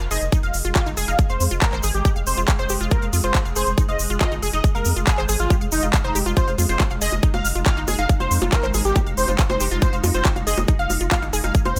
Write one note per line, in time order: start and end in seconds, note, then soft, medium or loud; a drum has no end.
0.00 0.08 F1 medium
0.00 11.79 G#3 medium
0.00 6.39 G#4 medium
0.00 0.06 F5 medium
0.00 closed hi-hat soft
0.11 0.18 F1 loud
0.11 0.16 G#4 loud
0.11 0.24 D#5 loud
0.11 open hi-hat loud
0.11 shaker medium
0.21 0.29 F1 loud
0.21 closed hi-hat medium
0.21 shaker soft
0.32 0.41 D#4 medium
0.32 kick loud
0.32 closed hi-hat medium
0.32 shaker medium
0.43 0.51 F1 medium
0.43 0.57 F5 loud
0.43 0.47 F5 medium
0.43 closed hi-hat soft
0.43 shaker soft
0.54 0.62 F1 medium
0.54 open hi-hat loud
0.54 shaker medium
0.65 0.72 F1 loud
0.65 0.70 F4 medium
0.65 closed hi-hat medium
0.65 shaker soft
0.76 0.81 F4 loud
0.76 0.89 F5 loud
0.76 kick loud
0.76 clap loud
0.76 closed hi-hat medium
0.76 shaker medium
0.86 0.94 G1 medium
0.86 0.90 D#4 medium
0.86 closed hi-hat soft
0.86 shaker soft
0.97 1.05 F1 loud
0.97 1.03 G#4 loud
0.97 open hi-hat loud
0.97 shaker medium
1.08 1.16 F1 medium
1.08 1.14 D#4 medium
1.08 1.17 F5 medium
1.08 closed hi-hat medium
1.08 shaker soft
1.19 kick loud
1.19 closed hi-hat medium
1.19 shaker medium
1.29 1.37 F1 medium
1.29 1.43 C5 medium
1.29 1.33 F5 medium
1.29 closed hi-hat soft
1.29 shaker soft
1.40 1.48 F2 loud
1.40 open hi-hat loud
1.40 shaker medium
1.51 1.59 F1 medium
1.51 1.57 F4 medium
1.51 closed hi-hat medium
1.51 shaker soft
1.62 1.75 A#4 loud
1.62 1.65 F5 medium
1.62 kick loud
1.62 clap loud
1.62 closed hi-hat medium
1.62 shaker medium
1.73 1.80 G#1 medium
1.73 1.78 C5 loud
1.73 clap soft
1.73 closed hi-hat soft
1.73 shaker soft
1.83 1.91 G#1 loud
1.83 1.89 G#4 loud
1.83 open hi-hat loud
1.83 shaker loud
1.94 2.02 G#1 medium
1.94 2.08 G4 loud
1.94 closed hi-hat medium
1.94 shaker soft
2.05 2.11 G4 medium
2.05 kick loud
2.05 closed hi-hat medium
2.05 shaker medium
2.16 2.24 F1 medium
2.16 2.19 F5 medium
2.16 closed hi-hat soft
2.16 shaker soft
2.27 2.34 F1 loud
2.27 2.40 C5 loud
2.27 open hi-hat loud
2.27 shaker loud
2.37 2.45 F1 medium
2.37 2.43 F4 medium
2.37 closed hi-hat medium
2.37 shaker soft
2.48 2.52 F5 medium
2.48 kick loud
2.48 clap loud
2.48 closed hi-hat medium
2.48 shaker medium
2.59 2.67 F1 medium
2.59 2.65 C5 loud
2.59 2.72 C5 loud
2.59 closed hi-hat soft
2.59 shaker soft
2.69 2.77 F1 loud
2.69 2.75 G4 medium
2.69 open hi-hat loud
2.69 shaker loud
2.81 2.88 F1 medium
2.81 2.89 F4 loud
2.81 closed hi-hat soft
2.81 shaker soft
2.91 2.97 F4 medium
2.91 3.05 A#4 loud
2.91 kick loud
2.91 closed hi-hat medium
2.91 shaker soft
3.02 3.10 F1 medium
3.02 3.06 F5 medium
3.02 closed hi-hat soft
3.02 shaker soft
3.13 3.21 F2 loud
3.13 3.21 F4 medium
3.13 open hi-hat loud
3.13 shaker medium
3.23 3.31 F1 medium
3.23 3.29 F4 medium
3.23 3.37 C5 loud
3.23 closed hi-hat soft
3.23 shaker soft
3.35 3.43 F4 medium
3.35 kick loud
3.35 clap loud
3.35 closed hi-hat medium
3.35 shaker medium
3.45 3.53 F1 medium
3.45 3.51 F5 medium
3.45 closed hi-hat soft
3.45 shaker soft
3.56 3.64 F1 loud
3.56 3.62 G#4 loud
3.56 3.70 C5 loud
3.56 open hi-hat loud
3.56 shaker loud
3.67 3.75 F1 medium
3.67 closed hi-hat medium
3.67 shaker soft
3.78 3.86 D#4 medium
3.78 kick loud
3.78 closed hi-hat medium
3.78 shaker medium
3.88 3.96 F1 medium
3.88 4.02 D#5 loud
3.88 3.92 F5 medium
3.88 closed hi-hat soft
3.88 shaker soft
3.99 4.07 F1 loud
3.99 open hi-hat loud
3.99 shaker medium
4.10 4.18 F1 loud
4.10 4.16 F4 medium
4.10 closed hi-hat medium
4.10 shaker soft
4.21 4.27 F4 loud
4.21 4.34 D#5 loud
4.21 kick loud
4.21 clap loud
4.21 closed hi-hat soft
4.21 shaker medium
4.31 4.39 G1 medium
4.31 4.35 D#4 medium
4.31 closed hi-hat soft
4.31 shaker soft
4.42 4.50 F1 loud
4.42 4.48 G#4 loud
4.42 open hi-hat loud
4.42 shaker medium
4.53 4.61 F1 medium
4.53 4.59 D#4 medium
4.53 4.62 D#5 loud
4.53 closed hi-hat soft
4.53 shaker soft
4.64 kick loud
4.64 closed hi-hat medium
4.64 shaker soft
4.75 4.82 F1 medium
4.75 4.88 A#4 medium
4.75 4.78 F5 medium
4.75 closed hi-hat soft
4.75 shaker soft
4.85 4.93 F2 loud
4.85 open hi-hat loud
4.85 shaker loud
4.96 5.04 F1 medium
4.96 5.02 F4 medium
4.96 closed hi-hat soft
4.96 shaker soft
5.07 5.21 G#4 loud
5.07 5.11 F5 medium
5.07 kick loud
5.07 clap loud
5.07 closed hi-hat medium
5.07 shaker medium
5.18 5.26 G#1 medium
5.18 5.24 C5 loud
5.18 clap soft
5.18 closed hi-hat soft
5.18 shaker soft
5.29 5.36 G#1 loud
5.29 5.34 G#4 loud
5.29 open hi-hat loud
5.29 shaker medium
5.39 5.47 G#1 medium
5.39 5.53 F4 medium
5.39 closed hi-hat medium
5.39 shaker soft
5.50 5.56 G4 medium
5.50 kick loud
5.50 closed hi-hat medium
5.50 shaker medium
5.61 5.69 F1 medium
5.61 5.65 F5 medium
5.61 closed hi-hat soft
5.61 shaker soft
5.72 5.80 F1 loud
5.72 5.85 D#4 medium
5.72 open hi-hat loud
5.72 shaker medium
5.83 5.90 F1 medium
5.83 5.88 F4 medium
5.83 closed hi-hat medium
5.83 shaker soft
5.93 5.97 F5 medium
5.93 kick loud
5.93 clap loud
5.93 closed hi-hat soft
5.93 shaker medium
6.04 6.12 F1 medium
6.04 6.18 D#4 loud
6.04 6.10 C5 loud
6.04 closed hi-hat soft
6.04 shaker soft
6.15 6.23 F1 loud
6.15 6.21 G4 medium
6.15 open hi-hat loud
6.15 shaker loud
6.26 6.34 F1 medium
6.26 6.34 F4 loud
6.26 closed hi-hat soft
6.26 shaker soft
6.37 11.79 D#4 medium
6.37 6.42 F4 medium
6.37 6.50 C5 loud
6.37 kick loud
6.37 closed hi-hat medium
6.37 shaker medium
6.47 6.55 F1 medium
6.47 6.51 F5 medium
6.47 closed hi-hat soft
6.47 shaker soft
6.58 6.66 F2 medium
6.58 6.67 F4 medium
6.58 open hi-hat loud
6.58 high bongo soft
6.58 shaker loud
6.69 6.77 F1 loud
6.69 6.75 F4 medium
6.69 6.83 C5 loud
6.69 closed hi-hat soft
6.69 shaker soft
6.80 6.88 F4 medium
6.80 kick loud
6.80 clap loud
6.80 closed hi-hat medium
6.80 high bongo medium
6.80 shaker medium
6.90 6.98 F1 medium
6.90 6.96 F5 medium
6.90 closed hi-hat soft
6.90 shaker soft
7.01 7.09 F1 loud
7.01 7.07 G#4 loud
7.01 7.15 D#5 loud
7.01 open hi-hat loud
7.01 shaker loud
7.12 7.20 F1 medium
7.12 closed hi-hat medium
7.12 high bongo soft
7.12 shaker soft
7.23 7.32 D#4 medium
7.23 kick loud
7.23 closed hi-hat medium
7.23 shaker medium
7.34 7.42 F1 medium
7.34 7.47 F5 loud
7.34 7.37 F5 medium
7.34 closed hi-hat soft
7.34 high bongo medium
7.34 shaker soft
7.45 7.52 F1 loud
7.45 open hi-hat loud
7.45 shaker loud
7.55 7.63 F1 medium
7.55 7.61 F4 medium
7.55 closed hi-hat medium
7.55 shaker soft
7.66 7.72 F4 loud
7.66 7.80 F5 loud
7.66 kick loud
7.66 clap loud
7.66 closed hi-hat medium
7.66 high bongo soft
7.66 shaker soft
7.77 7.85 G1 medium
7.77 7.80 D#4 medium
7.77 closed hi-hat soft
7.77 shaker soft
7.88 7.95 F1 loud
7.88 7.93 G#4 loud
7.88 open hi-hat loud
7.88 high bongo medium
7.88 shaker medium
7.98 8.06 F1 medium
7.98 8.04 D#4 medium
7.98 8.08 F5 medium
7.98 closed hi-hat soft
7.98 shaker soft
8.09 kick loud
8.09 closed hi-hat medium
8.09 shaker medium
8.20 8.28 F1 medium
8.20 8.34 C5 medium
8.20 8.24 F5 medium
8.20 closed hi-hat soft
8.20 high bongo soft
8.20 shaker soft
8.31 8.39 F2 loud
8.31 open hi-hat loud
8.31 shaker medium
8.40 8.49 F1 loud
8.40 8.47 F4 medium
8.40 closed hi-hat medium
8.40 high bongo medium
8.40 shaker soft
8.52 8.66 A#4 loud
8.52 8.56 F5 medium
8.52 kick loud
8.52 clap loud
8.52 closed hi-hat medium
8.52 shaker medium
8.63 8.71 G#1 medium
8.63 8.69 C5 loud
8.63 clap soft
8.63 closed hi-hat soft
8.63 shaker soft
8.74 8.82 G#1 loud
8.74 8.80 G#4 loud
8.74 open hi-hat loud
8.74 high bongo soft
8.74 shaker medium
8.85 8.93 G#1 medium
8.85 8.98 G4 medium
8.85 closed hi-hat medium
8.85 shaker soft
8.96 9.01 G4 medium
8.96 kick loud
8.96 closed hi-hat medium
8.96 high bongo medium
8.96 shaker medium
9.06 9.14 F1 medium
9.06 9.10 F5 medium
9.06 closed hi-hat soft
9.06 shaker soft
9.17 9.25 F1 medium
9.17 9.31 C5 loud
9.17 open hi-hat loud
9.17 shaker medium
9.28 9.36 F1 medium
9.28 9.34 F4 medium
9.28 closed hi-hat medium
9.28 high bongo soft
9.28 shaker soft
9.38 9.42 F5 medium
9.38 kick loud
9.38 clap loud
9.38 closed hi-hat medium
9.38 shaker medium
9.50 9.57 F1 medium
9.50 9.63 C5 medium
9.50 9.55 C5 loud
9.50 closed hi-hat soft
9.50 high bongo medium
9.50 shaker soft
9.60 9.68 F1 loud
9.60 9.66 G4 medium
9.60 open hi-hat medium
9.60 shaker medium
9.71 9.79 F1 medium
9.71 9.80 F4 loud
9.71 closed hi-hat medium
9.71 shaker soft
9.82 9.88 F4 medium
9.82 9.95 C5 loud
9.82 kick loud
9.82 closed hi-hat medium
9.82 high bongo soft
9.82 shaker soft
9.93 10.00 F1 medium
9.93 9.96 F5 medium
9.93 closed hi-hat soft
9.93 shaker soft
10.04 10.11 F2 loud
10.04 10.12 F4 medium
10.04 open hi-hat loud
10.04 high bongo medium
10.04 shaker loud
10.14 10.22 F1 loud
10.14 10.20 F4 medium
10.14 10.28 C5 loud
10.14 closed hi-hat medium
10.14 shaker soft
10.25 10.34 F4 medium
10.25 kick loud
10.25 clap loud
10.25 closed hi-hat medium
10.25 shaker medium
10.36 10.44 F1 medium
10.36 10.42 F5 medium
10.36 closed hi-hat soft
10.36 high bongo soft
10.36 shaker soft
10.47 10.54 F1 loud
10.47 10.52 G#4 loud
10.47 10.60 D#5 medium
10.47 open hi-hat loud
10.47 shaker medium
10.57 10.65 F1 medium
10.57 closed hi-hat medium
10.57 high bongo medium
10.57 shaker soft
10.68 10.77 D#4 medium
10.68 kick loud
10.68 closed hi-hat medium
10.68 shaker soft
10.79 10.87 F1 medium
10.79 10.93 F5 medium
10.79 10.83 F5 medium
10.79 closed hi-hat soft
10.79 shaker soft
10.90 10.98 F1 loud
10.90 open hi-hat loud
10.90 high bongo soft
10.90 shaker medium
11.00 11.08 F1 medium
11.00 11.06 F4 medium
11.00 closed hi-hat medium
11.00 shaker soft
11.12 11.17 F4 loud
11.12 11.25 F5 loud
11.12 kick loud
11.12 clap loud
11.12 closed hi-hat medium
11.12 high bongo medium
11.12 shaker soft
11.22 11.30 G1 medium
11.22 11.26 D#4 medium
11.22 closed hi-hat soft
11.22 shaker soft
11.33 11.41 F1 loud
11.33 11.39 G#4 loud
11.33 open hi-hat loud
11.33 shaker medium
11.44 11.52 F1 medium
11.44 11.50 D#4 medium
11.44 11.53 F5 medium
11.44 closed hi-hat medium
11.44 high bongo soft
11.44 shaker soft
11.54 kick loud
11.54 closed hi-hat medium
11.54 shaker medium
11.65 11.73 F1 medium
11.65 11.79 C5 medium
11.65 11.69 F5 medium
11.65 closed hi-hat soft
11.65 high bongo medium
11.65 shaker soft
11.76 11.79 F2 loud
11.76 open hi-hat loud